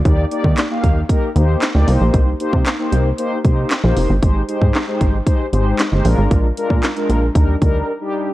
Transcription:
<<
  \new Staff \with { instrumentName = "Analog polysynth" } { \time 4/4 \key ees \major \tempo 4 = 115 <bes ees' g' d''>8 <bes ees' g' d''>8 r16 <bes ees' g' f''>8 r16 <bes ees' g' bes'>8 <bes ees' g' c''>8 r16 <bes ees' g' d''>16 <bes ees' g' c''>8~ | <bes ees' g' c''>16 r16 <bes ees' g' c''>8 r16 <bes ees' g' c''>8 r16 <bes ees' g' c''>8 <bes ees' g' c''>8 r16 <bes ees' g' c''>8 r16 | <aes ees' g' c''>8 <aes ees' g' c''>8 r16 <aes ees' g' c''>8 r16 <aes ees' g' c''>8 <aes ees' g' c''>8 r16 <aes ees' g' c''>16 <aes d' f' bes'>8~ | <aes d' f' bes'>16 r16 <aes d' f' bes'>8 r16 <aes d' f' bes'>8 r16 <g d' ees' bes'>8 <g d' ees' bes'>8 r16 <g d' ees' g'>8 r16 | }
  \new Staff \with { instrumentName = "Analog synth bass" } { \clef bass \time 4/4 \key ees \major ees,8 r16 ees16 r8 ees,8 r8 ees,8 r16 d,16 c,16 bes,,16 | c,8 r16 c16 r8 c,8 r8 c,8 r16 bes,,16 f,,16 g,,16 | aes,,8 r16 aes,16 r8 aes,,8 r8 aes,,8 r16 g,,16 bes,,16 aes,,16 | bes,,8 r16 bes,16 r8 bes,,8 ees,8 d,8 r4 | }
  \new DrumStaff \with { instrumentName = "Drums" } \drummode { \time 4/4 <hh bd>8 hh16 bd16 <hc hh sn>8 <hh bd>8 <hh bd>8 hh8 <hc hh sn>8 hho8 | <hh bd>8 hh16 bd16 <hc hh sn>8 hh8 hh8 <hh bd>8 <hc hh sn>8 hho8 | <hh bd>8 hh16 bd16 <hc hh sn>8 <hh bd>8 <hh bd>8 hh8 <hc hh sn>8 hho8 | <hh bd>8 hh16 bd16 <hc hh sn>16 hh16 hh8 <hh bd>8 <hh bd>8 r4 | }
>>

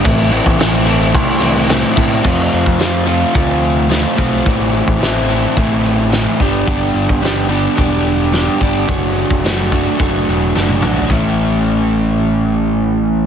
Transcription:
<<
  \new Staff \with { instrumentName = "Overdriven electric guitar" } { \time 4/4 \key a \minor \tempo 4 = 108 <a, e a c' e'>8 <a, e a c' e'>8 <a, e a c' e'>8 <a, e a c' e'>8 <a, e a c' e'>8 <a, e a c' e'>8 <a, e a c' e'>8 <a, e a c' e'>8 | <f a c' f'>4 <f a c' f'>8 <f a c' f'>8 <f a c' f'>4 <f a c' f'>8 <f a c' f'>8 | <a, e a c' e'>4 <a, e a c' e'>8 <a, e a c' e'>8 <a, e a c' e'>4 <a, e a c' e'>8 <g b d' g'>8 | <g b d' g'>4 <g b d' g'>8 <g b d' g'>8 <g b d' g'>4 <g b d' g'>8 <g b d' g'>8 |
<fis a d' fis'>4 <fis a d' fis'>8 <fis a d' fis'>8 <fis a d' fis'>4 <fis a d' fis'>8 <fis a d' fis'>8 | <a, e a cis' e'>1 | }
  \new Staff \with { instrumentName = "Picked electric bass" } { \clef bass \time 4/4 \key a \minor a,,8. a,,4~ a,,16 c,4. a,8 | f,8 f,16 f,4~ f,16 d,4. b,,8 | a,,8. a,,4~ a,,16 a,,4. g,,8 | g,,8 g,,16 g,,4~ g,,16 e,,4. g,,8 |
fis,,8. fis,,4~ fis,,16 fis,,8 e,,8 fis,,8 a,,8 | a,,1 | }
  \new DrumStaff \with { instrumentName = "Drums" } \drummode { \time 4/4 <cymc bd>8 cymc16 bd16 <cymc sn>8 cymc8 <cymc bd>8 cymc8 <cymc sn>8 <cymc bd>8 | <cymc bd>8 hho16 bd16 <hho sn>8 hho8 <hho bd>8 hho8 <hho sn>8 <hho bd>8 | <hho bd>8 hho16 bd16 <hho sn>8 hho8 <hho bd>8 hho8 <hho sn>8 <hho bd>8 | <hho bd>8 hho16 bd16 <hho sn>8 hho8 <hho bd>8 hho8 <hho sn>8 <hho bd>8 |
<hho bd>8 hho16 bd16 <hho sn>8 <hho bd>8 <hho bd>8 hho8 sn16 tommh16 toml16 tomfh16 | <bd tomfh>4 r4 r4 r4 | }
>>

